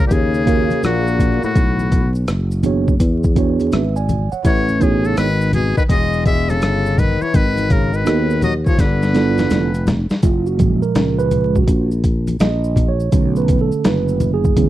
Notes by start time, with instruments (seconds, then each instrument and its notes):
0.06 tenor saxophone A#2, muted trumpet G4
0.11 fretless electric bass D#2, tenor saxophone C#3, muted trumpet G#4, kick, closed hi-hat, maracas
0.34 maracas
0.46 tine electric piano A#3 F#4 G#4 A#4 F5, kick, closed hi-hat, maracas
0.71 muted fretless electric bass stroke, closed hi-hat, high conga, maracas
0.83 fretless electric bass A#1, tenor saxophone A#2, muted trumpet F#4, cross-stick, closed hi-hat, high conga, maracas
1.07 maracas
1.19 kick, closed hi-hat, high conga, low conga, maracas
1.43 tenor saxophone A2, muted trumpet F#4, maracas
1.55 fretless electric bass B1, kick, closed hi-hat, maracas
1.79 high conga, maracas
1.92 kick, closed hi-hat, low conga, maracas
2.15 maracas
2.28 fretless electric bass F#1, cross-stick, closed hi-hat, maracas
2.52 maracas
2.63 tine electric piano B3 D4 F#4 G#4 C#5, closed hi-hat, high conga, low conga, maracas
2.88 kick, maracas
3.00 fretless electric bass E2, kick, closed hi-hat, maracas
3.24 kick, maracas
3.35 tine electric piano B3 D4 F#4 G#4 C#5, kick, closed hi-hat, maracas
3.60 closed hi-hat, high conga, maracas
3.72 fretless electric bass G#1, tine electric piano B4 E5, cross-stick, closed hi-hat, high conga, maracas
3.96 tine electric piano D5 G#5, maracas
4.09 closed hi-hat, high conga, low conga, maracas
4.32 tine electric piano C#5 F#5, muted fretless electric bass stroke, maracas
4.45 fretless electric bass A1, tenor saxophone E3, muted trumpet C#5, kick, closed hi-hat, maracas
4.69 high conga, maracas
4.79 tenor saxophone B2, tine electric piano B3 D#4 E4 G#4 C#5, muted trumpet G#4, kick, closed hi-hat, low conga, maracas
5.04 tenor saxophone C#3, muted trumpet A4, maracas
5.17 fretless electric bass G#1, tenor saxophone D#3, muted trumpet B4, cross-stick, closed hi-hat, maracas
5.41 maracas
5.53 tenor saxophone B2, muted trumpet G#4, closed hi-hat, high conga, low conga, maracas
5.77 tenor saxophone D#3, muted trumpet B4, kick, maracas
5.89 fretless electric bass E1, tenor saxophone G#3, muted trumpet D#5, kick, closed hi-hat, maracas
6.13 maracas
6.26 tenor saxophone G#3, muted trumpet E5, kick, closed hi-hat, maracas
6.49 tenor saxophone C#3, muted trumpet A4, closed hi-hat, high conga, maracas
6.62 fretless electric bass G1, cross-stick, closed hi-hat, high conga, maracas
6.86 maracas
6.98 tenor saxophone D#3, muted trumpet B4, kick, closed hi-hat, high conga, low conga, maracas
7.21 tenor saxophone E3, muted trumpet C#5, muted fretless electric bass stroke, maracas
7.34 fretless electric bass G#1, tenor saxophone D#3, muted trumpet B4, kick, closed hi-hat, maracas
7.57 closed hi-hat, high conga, maracas
7.70 tenor saxophone C#3, muted trumpet A#4, kick, closed hi-hat, low conga, maracas
7.93 tenor saxophone D#3, muted trumpet B4, maracas
8.05 fretless electric bass D#2, tine electric piano B3 D#4 F#4 G#4 A#4, cross-stick, closed hi-hat, maracas
8.30 maracas
8.42 tenor saxophone F#3, muted trumpet D#5, closed hi-hat, high conga, low conga, maracas
8.66 tenor saxophone F3, muted trumpet C#5, kick, maracas
8.78 fretless electric bass G1, tenor saxophone D3, muted trumpet B4, kick, snare, closed hi-hat, maracas
9.02 snare, maracas
9.13 tine electric piano B3 D4 E4 F4 A4, snare, closed hi-hat, maracas
9.38 snare, closed hi-hat, high conga, maracas
9.50 fretless electric bass F1, snare, closed hi-hat, high conga, maracas
9.74 closed hi-hat, maracas
9.87 snare, closed hi-hat, high conga, low conga, maracas
10.10 muted fretless electric bass stroke, snare, maracas
10.23 fretless electric bass F#1, tine electric piano F4, kick, closed hi-hat, maracas
10.46 tine electric piano F#4, maracas
10.58 tine electric piano A#2 F3 G#3, kick, closed hi-hat, low conga, maracas
10.82 tine electric piano A#4, muted fretless electric bass stroke, maracas
10.95 fretless electric bass C#2, snare, closed hi-hat, maracas
11.19 tine electric piano B4, maracas
11.31 closed hi-hat, high conga, low conga, maracas
11.56 tine electric piano F#4, kick, maracas
11.67 fretless electric bass A#1, kick, closed hi-hat, maracas
11.91 maracas
12.04 kick, closed hi-hat, maracas
12.27 closed hi-hat, high conga, maracas
12.40 fretless electric bass A#1, tine electric piano D#5, snare, closed hi-hat, high conga, maracas
12.64 maracas
12.76 kick, closed hi-hat, high conga, low conga, maracas
12.88 tine electric piano C#5
13.00 maracas
13.12 fretless electric bass B1, tine electric piano D3 A3 C#4, kick, closed hi-hat, maracas
13.36 tine electric piano B4, maracas
13.48 kick, closed hi-hat, low conga, maracas
13.61 tine electric piano A4
13.72 muted fretless electric bass stroke, maracas
13.84 fretless electric bass F#1, tine electric piano B4, snare, closed hi-hat, maracas
14.08 maracas
14.20 closed hi-hat, high conga, low conga, maracas
14.34 tine electric piano G#4
14.44 kick, maracas
14.56 fretless electric bass E2, tine electric piano D3 F#3 G#3 C#4, kick, closed hi-hat, maracas